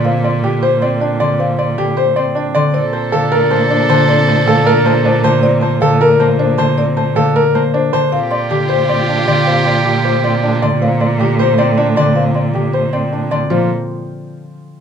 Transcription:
<<
  \new Staff \with { instrumentName = "Marimba" } { \time 7/8 \key bes \major \tempo 4 = 156 f''8 c'''8 g''8 c''8 c'''8 d''8 c'''8 | f''8 c'''8 g''8 c''8 c'''8 d''8 c'''8 | d''8 a''8 f''8 bes'8 a''8 c''8 a''8 | d''8 a''8 f''8 bes'8 a''8 c''8 a''8 |
d''8 a''8 f''8 bes'8 a''8 c''8 a''8 | d''8 a''8 f''8 bes'8 a''8 c''8 a''8 | f''8 c'''8 g''8 c''8 c'''8 d''8 c'''8 | f''8 c'''8 g''8 c''8 c'''8 d''8 c'''8 |
f''8 c'''8 g''8 c''8 c'''8 d''8 c'''8 | f''8 c'''8 g''8 c''8 c'''8 d''8 c'''8 | c''8 r2. | }
  \new Staff \with { instrumentName = "Grand piano" } { \time 7/8 \key bes \major c'8 d''8 g'8 c''8 d''8 d'8 d''8 | c'8 d''8 g'8 c''8 d''8 d'8 d''8 | c'8 c''8 a'8 bes'8 c''8 d'8 c''8 | c'8 c''8 a'8 bes'8 c''8 d'8 c''8 |
c'8 c''8 a'8 bes'8 c''8 d'8 c''8 | c'8 c''8 a'8 bes'8 c''8 d'8 c''8 | c'8 d''8 g'8 c''8 d''8 d'8 d''8 | c'8 d''8 g'8 c''8 d''8 d'8 d''8 |
c'8 d''8 g'8 c''8 d''8 d'8 d''8 | c'8 d''8 g'8 c''8 d''8 d'8 d''8 | f'8 r2. | }
  \new Staff \with { instrumentName = "Oboe" } { \time 7/8 \key bes \major r2. r8 | r2. r8 | a'2.~ a'8~ | a'2. r8 |
r2. r8 | r2. r8 | g'2.~ g'8~ | g'2. r8 |
r2. r8 | r2. r8 | r2. r8 | }
  \new Staff \with { instrumentName = "Violin section" } { \time 7/8 \key bes \major r2. r8 | r2. r8 | <d' a'>2.~ <d' a'>8~ | <d' a'>2. r8 |
r2. r8 | r2. r8 | <f' g'>2.~ <f' g'>8~ | <f' g'>2. r8 |
r2. r8 | r2. r8 | r2. r8 | }
  \new Staff \with { instrumentName = "Harp" } { \clef bass \time 7/8 \key bes \major <d c'>4 d4 c'4 d8~ | d4 d4 c'4 d8 | r4 d4 bes4 d8~ | d4 d4 bes4 d8~ |
d4 d4 bes4 d8~ | d4 d4 bes4 d8 | r4 d4 c'4 d8~ | d4 d4 c'4 d8~ |
d4 d4 c'4 d8~ | d4 d4 c'4 d8 | f8 r2. | }
  \new Staff \with { instrumentName = "Cello" } { \clef bass \time 7/8 \key bes \major bes,2.~ bes,8~ | bes,2.~ bes,8 | bes,2.~ bes,8~ | bes,2.~ bes,8~ |
bes,2.~ bes,8~ | bes,2.~ bes,8 | bes,2.~ bes,8~ | bes,2.~ bes,8~ |
bes,2.~ bes,8~ | bes,2.~ bes,8 | bes,8 r2. | }
>>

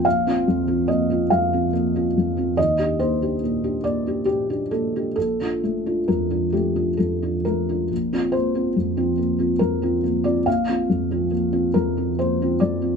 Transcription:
\new Staff \with { instrumentName = "Felt piano" } { \time 3/4 \key bes \major \tempo 4 = 70 << { f''4 ees''8 f''8 r4 | ees''8 c''4 d''8 g'8 a'8 | a'4 bes'8 g'8 a'8 bes'8~ | bes'8 c''4. bes'8. d''16 |
f''4 r8 bes'8 c''8 d''8 | } \\ { bes,,16 <c' f'>16 f,16 <c' f'>16 bes16 <c' f'>16 f,16 <c' f'>16 bes16 <c' f'>16 f,16 <c' f'>16 | ees,16 <d' g'>16 bes16 <d' g'>16 bes,16 <d' g'>16 bes16 <d' g'>16 bes,16 <d' g'>16 bes16 <d' g'>16 | bes,,16 <d' f'>16 a16 <d' f'>16 f,16 <d' f'>16 a16 <d' f'>16 f,16 <d' f'>16 a16 <d' f'>16 | bes,,16 <c' f'>16 bes16 <c' f'>16 f,16 <c' f'>16 bes16 <c' f'>16 f,16 <c' f'>16 bes16 <c' f'>16 |
bes,,16 <c' f'>16 f,16 <c' f'>16 bes16 <c' f'>16 f,16 <c' f'>16 bes16 <c' f'>16 f,16 <c' f'>16 | } >> }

